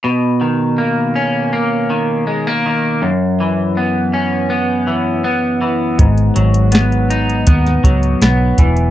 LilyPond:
<<
  \new Staff \with { instrumentName = "Clean electric guitar" } { \clef bass \time 4/4 \key b \major \tempo 4 = 81 b,8 dis8 ais8 cis'8 ais8 dis8 gis16 ais16 dis8 | fis,8 e8 b8 cis'8 b8 e8 b8 e8 | gis,8 fis8 b8 dis'8 b8 fis8 b8 e8 | }
  \new Staff \with { instrumentName = "Fingered electric bass" } { \clef bass \time 4/4 \key b \major r1 | r1 | gis,,8 gis,,4. dis,8 cis,8 b,,8 e,,8 | }
  \new DrumStaff \with { instrumentName = "Drums" } \drummode { \time 4/4 r4 r4 r4 r4 | r4 r4 r4 r4 | <hh bd>16 hh16 hh16 hh16 <hh sn>16 hh16 hh16 hh16 <hh bd>16 <hh sn>16 <hh bd>16 hh16 <hh sn>8 <hh bd>16 hh16 | }
>>